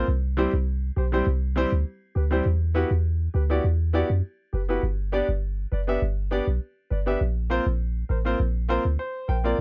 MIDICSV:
0, 0, Header, 1, 3, 480
1, 0, Start_track
1, 0, Tempo, 594059
1, 65, Time_signature, 4, 2, 24, 8
1, 7763, End_track
2, 0, Start_track
2, 0, Title_t, "Grand piano"
2, 0, Program_c, 0, 0
2, 299, Note_on_c, 0, 55, 89
2, 302, Note_on_c, 0, 60, 80
2, 305, Note_on_c, 0, 64, 82
2, 309, Note_on_c, 0, 67, 84
2, 311, Note_on_c, 0, 72, 95
2, 404, Note_off_c, 0, 55, 0
2, 405, Note_off_c, 0, 60, 0
2, 407, Note_off_c, 0, 64, 0
2, 409, Note_off_c, 0, 67, 0
2, 410, Note_off_c, 0, 72, 0
2, 779, Note_on_c, 0, 67, 55
2, 792, Note_on_c, 0, 72, 61
2, 833, Note_off_c, 0, 67, 0
2, 840, Note_off_c, 0, 72, 0
2, 907, Note_on_c, 0, 55, 82
2, 909, Note_on_c, 0, 60, 74
2, 913, Note_on_c, 0, 64, 75
2, 916, Note_on_c, 0, 67, 76
2, 919, Note_on_c, 0, 72, 95
2, 1000, Note_off_c, 0, 55, 0
2, 1001, Note_off_c, 0, 60, 0
2, 1003, Note_off_c, 0, 64, 0
2, 1005, Note_off_c, 0, 67, 0
2, 1006, Note_off_c, 0, 72, 0
2, 1259, Note_on_c, 0, 55, 88
2, 1262, Note_on_c, 0, 60, 79
2, 1266, Note_on_c, 0, 64, 80
2, 1270, Note_on_c, 0, 67, 83
2, 1273, Note_on_c, 0, 72, 103
2, 1364, Note_off_c, 0, 55, 0
2, 1366, Note_off_c, 0, 60, 0
2, 1367, Note_off_c, 0, 64, 0
2, 1369, Note_off_c, 0, 67, 0
2, 1371, Note_off_c, 0, 72, 0
2, 1738, Note_on_c, 0, 67, 54
2, 1751, Note_on_c, 0, 71, 58
2, 1792, Note_off_c, 0, 67, 0
2, 1799, Note_off_c, 0, 71, 0
2, 1865, Note_on_c, 0, 55, 81
2, 1868, Note_on_c, 0, 60, 75
2, 1872, Note_on_c, 0, 64, 76
2, 1875, Note_on_c, 0, 67, 70
2, 1878, Note_on_c, 0, 72, 89
2, 1959, Note_off_c, 0, 55, 0
2, 1960, Note_off_c, 0, 60, 0
2, 1962, Note_off_c, 0, 64, 0
2, 1964, Note_off_c, 0, 67, 0
2, 1966, Note_off_c, 0, 72, 0
2, 2217, Note_on_c, 0, 59, 86
2, 2220, Note_on_c, 0, 64, 82
2, 2223, Note_on_c, 0, 66, 81
2, 2227, Note_on_c, 0, 67, 83
2, 2230, Note_on_c, 0, 71, 92
2, 2323, Note_off_c, 0, 59, 0
2, 2324, Note_off_c, 0, 64, 0
2, 2326, Note_off_c, 0, 66, 0
2, 2328, Note_off_c, 0, 67, 0
2, 2329, Note_off_c, 0, 71, 0
2, 2697, Note_on_c, 0, 67, 52
2, 2711, Note_on_c, 0, 71, 59
2, 2752, Note_off_c, 0, 67, 0
2, 2759, Note_off_c, 0, 71, 0
2, 2824, Note_on_c, 0, 59, 82
2, 2828, Note_on_c, 0, 64, 74
2, 2831, Note_on_c, 0, 66, 77
2, 2834, Note_on_c, 0, 67, 78
2, 2837, Note_on_c, 0, 74, 88
2, 2919, Note_off_c, 0, 59, 0
2, 2920, Note_off_c, 0, 64, 0
2, 2922, Note_off_c, 0, 66, 0
2, 2924, Note_off_c, 0, 67, 0
2, 2925, Note_off_c, 0, 74, 0
2, 3177, Note_on_c, 0, 59, 89
2, 3181, Note_on_c, 0, 64, 84
2, 3184, Note_on_c, 0, 66, 82
2, 3187, Note_on_c, 0, 67, 83
2, 3190, Note_on_c, 0, 74, 97
2, 3283, Note_off_c, 0, 59, 0
2, 3285, Note_off_c, 0, 64, 0
2, 3287, Note_off_c, 0, 66, 0
2, 3288, Note_off_c, 0, 67, 0
2, 3290, Note_off_c, 0, 74, 0
2, 3658, Note_on_c, 0, 67, 53
2, 3671, Note_on_c, 0, 71, 58
2, 3712, Note_off_c, 0, 67, 0
2, 3719, Note_off_c, 0, 71, 0
2, 3785, Note_on_c, 0, 59, 78
2, 3789, Note_on_c, 0, 64, 73
2, 3792, Note_on_c, 0, 66, 71
2, 3796, Note_on_c, 0, 67, 72
2, 3799, Note_on_c, 0, 71, 87
2, 3879, Note_off_c, 0, 59, 0
2, 3881, Note_off_c, 0, 64, 0
2, 3882, Note_off_c, 0, 66, 0
2, 3884, Note_off_c, 0, 67, 0
2, 3886, Note_off_c, 0, 71, 0
2, 4139, Note_on_c, 0, 59, 87
2, 4142, Note_on_c, 0, 62, 81
2, 4144, Note_on_c, 0, 67, 83
2, 4148, Note_on_c, 0, 71, 81
2, 4151, Note_on_c, 0, 74, 97
2, 4244, Note_off_c, 0, 59, 0
2, 4245, Note_off_c, 0, 62, 0
2, 4246, Note_off_c, 0, 67, 0
2, 4248, Note_off_c, 0, 71, 0
2, 4250, Note_off_c, 0, 74, 0
2, 4619, Note_on_c, 0, 71, 53
2, 4631, Note_on_c, 0, 74, 59
2, 4673, Note_off_c, 0, 71, 0
2, 4679, Note_off_c, 0, 74, 0
2, 4745, Note_on_c, 0, 59, 83
2, 4749, Note_on_c, 0, 62, 77
2, 4752, Note_on_c, 0, 67, 73
2, 4755, Note_on_c, 0, 71, 74
2, 4758, Note_on_c, 0, 76, 90
2, 4839, Note_off_c, 0, 59, 0
2, 4841, Note_off_c, 0, 62, 0
2, 4842, Note_off_c, 0, 67, 0
2, 4844, Note_off_c, 0, 71, 0
2, 4846, Note_off_c, 0, 76, 0
2, 5098, Note_on_c, 0, 59, 93
2, 5100, Note_on_c, 0, 62, 80
2, 5104, Note_on_c, 0, 67, 81
2, 5107, Note_on_c, 0, 71, 79
2, 5110, Note_on_c, 0, 74, 98
2, 5203, Note_off_c, 0, 59, 0
2, 5204, Note_off_c, 0, 62, 0
2, 5206, Note_off_c, 0, 67, 0
2, 5208, Note_off_c, 0, 71, 0
2, 5210, Note_off_c, 0, 74, 0
2, 5579, Note_on_c, 0, 71, 53
2, 5591, Note_on_c, 0, 74, 58
2, 5633, Note_off_c, 0, 71, 0
2, 5639, Note_off_c, 0, 74, 0
2, 5705, Note_on_c, 0, 59, 79
2, 5709, Note_on_c, 0, 62, 75
2, 5712, Note_on_c, 0, 67, 75
2, 5714, Note_on_c, 0, 71, 73
2, 5718, Note_on_c, 0, 76, 87
2, 5799, Note_off_c, 0, 59, 0
2, 5801, Note_off_c, 0, 62, 0
2, 5802, Note_off_c, 0, 67, 0
2, 5804, Note_off_c, 0, 71, 0
2, 5805, Note_off_c, 0, 76, 0
2, 6058, Note_on_c, 0, 58, 88
2, 6060, Note_on_c, 0, 60, 79
2, 6064, Note_on_c, 0, 65, 83
2, 6067, Note_on_c, 0, 70, 85
2, 6070, Note_on_c, 0, 72, 100
2, 6163, Note_off_c, 0, 58, 0
2, 6165, Note_off_c, 0, 60, 0
2, 6166, Note_off_c, 0, 65, 0
2, 6168, Note_off_c, 0, 70, 0
2, 6169, Note_off_c, 0, 72, 0
2, 6538, Note_on_c, 0, 70, 54
2, 6551, Note_on_c, 0, 72, 57
2, 6592, Note_off_c, 0, 70, 0
2, 6599, Note_off_c, 0, 72, 0
2, 6665, Note_on_c, 0, 58, 86
2, 6668, Note_on_c, 0, 60, 76
2, 6672, Note_on_c, 0, 65, 75
2, 6674, Note_on_c, 0, 70, 79
2, 6678, Note_on_c, 0, 72, 92
2, 6759, Note_off_c, 0, 58, 0
2, 6760, Note_off_c, 0, 60, 0
2, 6762, Note_off_c, 0, 65, 0
2, 6764, Note_off_c, 0, 70, 0
2, 6765, Note_off_c, 0, 72, 0
2, 7018, Note_on_c, 0, 58, 92
2, 7021, Note_on_c, 0, 60, 81
2, 7024, Note_on_c, 0, 65, 85
2, 7027, Note_on_c, 0, 70, 86
2, 7030, Note_on_c, 0, 72, 99
2, 7123, Note_off_c, 0, 58, 0
2, 7125, Note_off_c, 0, 60, 0
2, 7126, Note_off_c, 0, 65, 0
2, 7128, Note_off_c, 0, 70, 0
2, 7130, Note_off_c, 0, 72, 0
2, 7265, Note_on_c, 0, 72, 79
2, 7488, Note_off_c, 0, 72, 0
2, 7498, Note_on_c, 0, 70, 56
2, 7505, Note_on_c, 0, 79, 72
2, 7512, Note_on_c, 0, 72, 62
2, 7553, Note_off_c, 0, 70, 0
2, 7559, Note_off_c, 0, 72, 0
2, 7626, Note_on_c, 0, 58, 85
2, 7630, Note_on_c, 0, 60, 76
2, 7633, Note_on_c, 0, 65, 74
2, 7636, Note_on_c, 0, 70, 78
2, 7639, Note_on_c, 0, 74, 90
2, 7719, Note_off_c, 0, 58, 0
2, 7721, Note_off_c, 0, 60, 0
2, 7723, Note_off_c, 0, 65, 0
2, 7724, Note_off_c, 0, 70, 0
2, 7726, Note_off_c, 0, 74, 0
2, 7728, Note_off_c, 0, 79, 0
2, 7763, End_track
3, 0, Start_track
3, 0, Title_t, "808-style bass"
3, 0, Program_c, 1, 38
3, 67, Note_on_c, 1, 36, 101
3, 383, Note_off_c, 1, 36, 0
3, 432, Note_on_c, 1, 36, 98
3, 737, Note_off_c, 1, 36, 0
3, 783, Note_on_c, 1, 35, 97
3, 991, Note_off_c, 1, 35, 0
3, 1024, Note_on_c, 1, 36, 108
3, 1341, Note_off_c, 1, 36, 0
3, 1393, Note_on_c, 1, 38, 96
3, 1490, Note_off_c, 1, 38, 0
3, 1746, Note_on_c, 1, 38, 88
3, 1952, Note_off_c, 1, 38, 0
3, 1985, Note_on_c, 1, 40, 108
3, 2302, Note_off_c, 1, 40, 0
3, 2350, Note_on_c, 1, 40, 104
3, 2656, Note_off_c, 1, 40, 0
3, 2704, Note_on_c, 1, 38, 102
3, 2912, Note_off_c, 1, 38, 0
3, 2944, Note_on_c, 1, 40, 114
3, 3261, Note_off_c, 1, 40, 0
3, 3312, Note_on_c, 1, 42, 94
3, 3410, Note_off_c, 1, 42, 0
3, 3665, Note_on_c, 1, 30, 94
3, 3872, Note_off_c, 1, 30, 0
3, 3905, Note_on_c, 1, 31, 108
3, 4222, Note_off_c, 1, 31, 0
3, 4272, Note_on_c, 1, 31, 98
3, 4577, Note_off_c, 1, 31, 0
3, 4625, Note_on_c, 1, 30, 103
3, 4832, Note_off_c, 1, 30, 0
3, 4866, Note_on_c, 1, 31, 120
3, 5183, Note_off_c, 1, 31, 0
3, 5232, Note_on_c, 1, 35, 97
3, 5330, Note_off_c, 1, 35, 0
3, 5586, Note_on_c, 1, 31, 98
3, 5793, Note_off_c, 1, 31, 0
3, 5826, Note_on_c, 1, 34, 105
3, 6143, Note_off_c, 1, 34, 0
3, 6194, Note_on_c, 1, 34, 104
3, 6498, Note_off_c, 1, 34, 0
3, 6544, Note_on_c, 1, 33, 100
3, 6751, Note_off_c, 1, 33, 0
3, 6786, Note_on_c, 1, 34, 119
3, 7102, Note_off_c, 1, 34, 0
3, 7152, Note_on_c, 1, 38, 94
3, 7250, Note_off_c, 1, 38, 0
3, 7505, Note_on_c, 1, 34, 100
3, 7712, Note_off_c, 1, 34, 0
3, 7763, End_track
0, 0, End_of_file